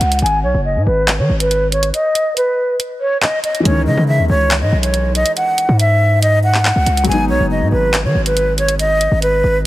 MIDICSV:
0, 0, Header, 1, 5, 480
1, 0, Start_track
1, 0, Tempo, 428571
1, 251, Time_signature, 4, 2, 24, 8
1, 10828, End_track
2, 0, Start_track
2, 0, Title_t, "Flute"
2, 0, Program_c, 0, 73
2, 0, Note_on_c, 0, 78, 89
2, 208, Note_off_c, 0, 78, 0
2, 251, Note_on_c, 0, 80, 99
2, 440, Note_off_c, 0, 80, 0
2, 489, Note_on_c, 0, 73, 80
2, 679, Note_off_c, 0, 73, 0
2, 730, Note_on_c, 0, 75, 83
2, 920, Note_off_c, 0, 75, 0
2, 968, Note_on_c, 0, 71, 81
2, 1308, Note_off_c, 0, 71, 0
2, 1330, Note_on_c, 0, 73, 72
2, 1520, Note_off_c, 0, 73, 0
2, 1571, Note_on_c, 0, 71, 76
2, 1909, Note_off_c, 0, 71, 0
2, 1930, Note_on_c, 0, 73, 77
2, 2119, Note_off_c, 0, 73, 0
2, 2170, Note_on_c, 0, 75, 95
2, 2622, Note_off_c, 0, 75, 0
2, 2651, Note_on_c, 0, 71, 81
2, 3081, Note_off_c, 0, 71, 0
2, 3369, Note_on_c, 0, 73, 75
2, 3559, Note_off_c, 0, 73, 0
2, 3611, Note_on_c, 0, 75, 98
2, 3800, Note_off_c, 0, 75, 0
2, 3852, Note_on_c, 0, 75, 74
2, 4041, Note_off_c, 0, 75, 0
2, 4093, Note_on_c, 0, 73, 86
2, 4281, Note_off_c, 0, 73, 0
2, 4332, Note_on_c, 0, 75, 79
2, 4521, Note_off_c, 0, 75, 0
2, 4571, Note_on_c, 0, 76, 89
2, 4760, Note_off_c, 0, 76, 0
2, 4810, Note_on_c, 0, 73, 97
2, 5149, Note_off_c, 0, 73, 0
2, 5170, Note_on_c, 0, 75, 78
2, 5359, Note_off_c, 0, 75, 0
2, 5409, Note_on_c, 0, 73, 78
2, 5748, Note_off_c, 0, 73, 0
2, 5772, Note_on_c, 0, 75, 92
2, 5961, Note_off_c, 0, 75, 0
2, 6012, Note_on_c, 0, 78, 87
2, 6462, Note_off_c, 0, 78, 0
2, 6492, Note_on_c, 0, 76, 89
2, 6942, Note_off_c, 0, 76, 0
2, 6970, Note_on_c, 0, 75, 91
2, 7160, Note_off_c, 0, 75, 0
2, 7210, Note_on_c, 0, 78, 89
2, 7887, Note_off_c, 0, 78, 0
2, 7931, Note_on_c, 0, 80, 96
2, 8120, Note_off_c, 0, 80, 0
2, 8169, Note_on_c, 0, 73, 82
2, 8359, Note_off_c, 0, 73, 0
2, 8411, Note_on_c, 0, 75, 82
2, 8600, Note_off_c, 0, 75, 0
2, 8649, Note_on_c, 0, 71, 77
2, 8988, Note_off_c, 0, 71, 0
2, 9010, Note_on_c, 0, 73, 72
2, 9200, Note_off_c, 0, 73, 0
2, 9252, Note_on_c, 0, 71, 75
2, 9590, Note_off_c, 0, 71, 0
2, 9611, Note_on_c, 0, 73, 82
2, 9800, Note_off_c, 0, 73, 0
2, 9849, Note_on_c, 0, 75, 96
2, 10301, Note_off_c, 0, 75, 0
2, 10331, Note_on_c, 0, 71, 83
2, 10725, Note_off_c, 0, 71, 0
2, 10828, End_track
3, 0, Start_track
3, 0, Title_t, "Grand piano"
3, 0, Program_c, 1, 0
3, 4034, Note_on_c, 1, 52, 67
3, 4070, Note_on_c, 1, 56, 62
3, 4107, Note_on_c, 1, 61, 66
3, 4144, Note_on_c, 1, 51, 81
3, 4313, Control_c, 1, 64, 127
3, 7857, Note_off_c, 1, 52, 0
3, 7875, Note_off_c, 1, 56, 0
3, 7879, Note_on_c, 1, 54, 71
3, 7894, Note_off_c, 1, 61, 0
3, 7912, Note_off_c, 1, 51, 0
3, 7915, Note_on_c, 1, 56, 59
3, 7947, Control_c, 1, 64, 0
3, 7950, Note_on_c, 1, 59, 65
3, 7987, Note_on_c, 1, 63, 73
3, 8159, Control_c, 1, 64, 127
3, 10828, Note_off_c, 1, 54, 0
3, 10828, Note_off_c, 1, 56, 0
3, 10828, Note_off_c, 1, 59, 0
3, 10828, Note_off_c, 1, 63, 0
3, 10828, End_track
4, 0, Start_track
4, 0, Title_t, "808-style bass"
4, 0, Program_c, 2, 38
4, 10, Note_on_c, 2, 37, 99
4, 240, Note_off_c, 2, 37, 0
4, 248, Note_on_c, 2, 32, 103
4, 488, Note_on_c, 2, 35, 104
4, 505, Note_off_c, 2, 32, 0
4, 603, Note_off_c, 2, 35, 0
4, 609, Note_on_c, 2, 30, 109
4, 850, Note_on_c, 2, 44, 98
4, 867, Note_off_c, 2, 30, 0
4, 964, Note_off_c, 2, 44, 0
4, 970, Note_on_c, 2, 32, 106
4, 1330, Note_on_c, 2, 51, 98
4, 1347, Note_off_c, 2, 32, 0
4, 1444, Note_off_c, 2, 51, 0
4, 1451, Note_on_c, 2, 32, 104
4, 2142, Note_off_c, 2, 32, 0
4, 4092, Note_on_c, 2, 37, 109
4, 4331, Note_on_c, 2, 49, 101
4, 4348, Note_off_c, 2, 37, 0
4, 4445, Note_off_c, 2, 49, 0
4, 4451, Note_on_c, 2, 49, 108
4, 4691, Note_on_c, 2, 39, 96
4, 4708, Note_off_c, 2, 49, 0
4, 4805, Note_off_c, 2, 39, 0
4, 4811, Note_on_c, 2, 37, 106
4, 5171, Note_on_c, 2, 44, 101
4, 5188, Note_off_c, 2, 37, 0
4, 5285, Note_off_c, 2, 44, 0
4, 5291, Note_on_c, 2, 35, 103
4, 5867, Note_off_c, 2, 35, 0
4, 6370, Note_on_c, 2, 44, 105
4, 7525, Note_off_c, 2, 44, 0
4, 7570, Note_on_c, 2, 37, 99
4, 7682, Note_off_c, 2, 37, 0
4, 7689, Note_on_c, 2, 37, 97
4, 7920, Note_off_c, 2, 37, 0
4, 7929, Note_on_c, 2, 32, 102
4, 8169, Note_on_c, 2, 35, 99
4, 8186, Note_off_c, 2, 32, 0
4, 8284, Note_off_c, 2, 35, 0
4, 8289, Note_on_c, 2, 30, 107
4, 8528, Note_on_c, 2, 44, 99
4, 8545, Note_off_c, 2, 30, 0
4, 8643, Note_off_c, 2, 44, 0
4, 8649, Note_on_c, 2, 32, 108
4, 9010, Note_on_c, 2, 51, 100
4, 9026, Note_off_c, 2, 32, 0
4, 9124, Note_off_c, 2, 51, 0
4, 9130, Note_on_c, 2, 32, 103
4, 10167, Note_off_c, 2, 32, 0
4, 10210, Note_on_c, 2, 32, 106
4, 10556, Note_off_c, 2, 32, 0
4, 10571, Note_on_c, 2, 32, 107
4, 10828, Note_off_c, 2, 32, 0
4, 10828, End_track
5, 0, Start_track
5, 0, Title_t, "Drums"
5, 9, Note_on_c, 9, 42, 79
5, 121, Note_off_c, 9, 42, 0
5, 131, Note_on_c, 9, 42, 73
5, 211, Note_off_c, 9, 42, 0
5, 211, Note_on_c, 9, 42, 75
5, 291, Note_off_c, 9, 42, 0
5, 291, Note_on_c, 9, 42, 71
5, 403, Note_off_c, 9, 42, 0
5, 1210, Note_on_c, 9, 39, 113
5, 1211, Note_on_c, 9, 42, 78
5, 1322, Note_off_c, 9, 39, 0
5, 1323, Note_off_c, 9, 42, 0
5, 1571, Note_on_c, 9, 42, 81
5, 1683, Note_off_c, 9, 42, 0
5, 1691, Note_on_c, 9, 42, 76
5, 1803, Note_off_c, 9, 42, 0
5, 1929, Note_on_c, 9, 42, 73
5, 2041, Note_off_c, 9, 42, 0
5, 2048, Note_on_c, 9, 42, 92
5, 2160, Note_off_c, 9, 42, 0
5, 2172, Note_on_c, 9, 42, 77
5, 2284, Note_off_c, 9, 42, 0
5, 2411, Note_on_c, 9, 42, 81
5, 2523, Note_off_c, 9, 42, 0
5, 2653, Note_on_c, 9, 42, 68
5, 2765, Note_off_c, 9, 42, 0
5, 3133, Note_on_c, 9, 42, 79
5, 3245, Note_off_c, 9, 42, 0
5, 3611, Note_on_c, 9, 39, 115
5, 3723, Note_off_c, 9, 39, 0
5, 3850, Note_on_c, 9, 42, 80
5, 3962, Note_off_c, 9, 42, 0
5, 3972, Note_on_c, 9, 42, 52
5, 4084, Note_off_c, 9, 42, 0
5, 4092, Note_on_c, 9, 42, 84
5, 4204, Note_off_c, 9, 42, 0
5, 5051, Note_on_c, 9, 39, 113
5, 5052, Note_on_c, 9, 42, 80
5, 5163, Note_off_c, 9, 39, 0
5, 5164, Note_off_c, 9, 42, 0
5, 5411, Note_on_c, 9, 42, 81
5, 5523, Note_off_c, 9, 42, 0
5, 5530, Note_on_c, 9, 42, 78
5, 5642, Note_off_c, 9, 42, 0
5, 5769, Note_on_c, 9, 42, 75
5, 5881, Note_off_c, 9, 42, 0
5, 5887, Note_on_c, 9, 42, 93
5, 5999, Note_off_c, 9, 42, 0
5, 6010, Note_on_c, 9, 42, 77
5, 6122, Note_off_c, 9, 42, 0
5, 6250, Note_on_c, 9, 42, 79
5, 6362, Note_off_c, 9, 42, 0
5, 6491, Note_on_c, 9, 42, 67
5, 6603, Note_off_c, 9, 42, 0
5, 6972, Note_on_c, 9, 42, 77
5, 7084, Note_off_c, 9, 42, 0
5, 7330, Note_on_c, 9, 39, 69
5, 7442, Note_off_c, 9, 39, 0
5, 7451, Note_on_c, 9, 39, 117
5, 7563, Note_off_c, 9, 39, 0
5, 7688, Note_on_c, 9, 42, 81
5, 7800, Note_off_c, 9, 42, 0
5, 7811, Note_on_c, 9, 42, 71
5, 7891, Note_off_c, 9, 42, 0
5, 7891, Note_on_c, 9, 42, 73
5, 7969, Note_off_c, 9, 42, 0
5, 7969, Note_on_c, 9, 42, 71
5, 8081, Note_off_c, 9, 42, 0
5, 8890, Note_on_c, 9, 39, 112
5, 8891, Note_on_c, 9, 42, 81
5, 9002, Note_off_c, 9, 39, 0
5, 9003, Note_off_c, 9, 42, 0
5, 9251, Note_on_c, 9, 42, 81
5, 9363, Note_off_c, 9, 42, 0
5, 9370, Note_on_c, 9, 42, 76
5, 9482, Note_off_c, 9, 42, 0
5, 9609, Note_on_c, 9, 42, 74
5, 9721, Note_off_c, 9, 42, 0
5, 9727, Note_on_c, 9, 42, 94
5, 9839, Note_off_c, 9, 42, 0
5, 9850, Note_on_c, 9, 42, 79
5, 9962, Note_off_c, 9, 42, 0
5, 10090, Note_on_c, 9, 42, 78
5, 10202, Note_off_c, 9, 42, 0
5, 10330, Note_on_c, 9, 42, 65
5, 10442, Note_off_c, 9, 42, 0
5, 10828, End_track
0, 0, End_of_file